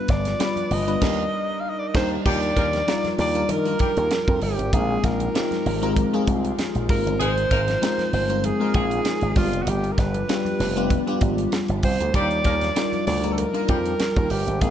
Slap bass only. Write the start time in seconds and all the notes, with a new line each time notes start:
0.09 G1
0.71 G1
1.02 D#2
1.94 D#2
2.26 D#2
2.57 D#2
3.18 D#2
3.49 D#3
3.97 D#2
4.28 F2
4.42 G1
4.58 G#1
4.73 A#1
5.04 A#1
5.66 G#1
6.27 C2
6.75 A#1
6.89 G#1
7.06 G1
7.20 G#1
7.51 G#1
8.13 G1
8.75 A#1
9.22 G#1
9.36 G1
9.53 F1
9.67 G1
9.98 G1
10.60 F1
11.22 G#1
11.69 G1
11.83 C2
12.00 D2
12.14 D#2
12.45 D#2
13.07 D2
13.69 F2
14.16 D#2
14.30 G1
14.47 G#1
14.61 A#1